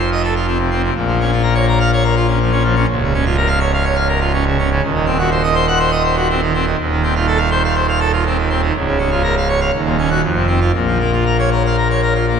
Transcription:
Already playing: F1 F2
0.12 D#5
0.24 A4
0.36 F4
0.47 C4
0.58 C3
0.71 C4
0.83 C3
0.95 A#1 A#2
1.07 F3
1.20 C#4
1.32 F4
1.43 A#4
1.55 C#5
1.68 A#4
1.80 F5
1.93 C#5
2.04 A#4
2.16 F4
2.28 C#4
2.40 F3
2.51 C#4
2.63 F3
2.75 C#4
2.89 C#1 C#2
3.02 C#3
3.14 C#4
3.25 F4
3.37 A#4
3.47 F5
3.59 C#5
3.73 F5
3.85 C#5
3.96 F5
4.08 A#4
4.20 F4
4.33 C#4
4.46 C#3
4.58 C#4
4.71 C#3
4.82 D#1 D#2
4.94 D#3
5.06 C4
5.18 F#4
5.31 C5
5.43 D#5
5.55 C5
5.67 F#5
5.80 C5
5.91 D#5
6.04 C5
6.16 F#4
6.30 C4
6.42 D#3
6.54 C4
6.66 D#3
6.78 D#1 D#2
6.91 D#3
7.03 C4
7.15 F4
7.27 A4
7.38 F5
7.51 C5
7.65 F5
7.75 C5
7.88 F5
8.00 A4
8.13 F4
8.26 C4
8.37 D#3
8.49 C4
8.62 D#3
8.74 C#1 C#2
8.86 C#3
8.98 C#4
9.10 F4
9.23 A#4
9.37 F5
9.49 C#5
9.60 F5
9.74 D#1 D#2
9.85 A#2
9.98 C#4
10.10 F#4
10.23 F1 F2
10.35 C3
10.47 C4
10.60 F4
10.74 A#1 A#2
10.87 F3
11.00 A#3
11.13 F4
11.26 A#4
11.39 C#5
11.52 A#4
11.66 F5
11.77 A#4
11.91 C#5
12.03 A#4
12.15 F4
12.28 A#3

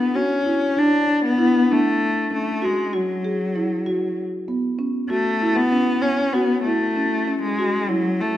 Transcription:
Already playing: B3
0.14 C#4 F#4
0.45 E4
0.77 D4
1.07 D4
1.25 B3
1.38 E4
1.69 A3 D4
2.31 A3 C#4
2.62 G#3 F#4
2.93 F#3 F#4
3.25 G#4
3.56 E4
3.86 F#4
4.48 B3
4.79 C#4
5.10 A3 F#4
5.41 E4
5.56 B3
5.73 C#4
6.02 C#4
6.33 B3 F#4
6.64 A3 E4
6.96 C#4
7.27 C#4
7.42 G#3
7.59 F#4
7.89 F#3 E4
8.20 A3

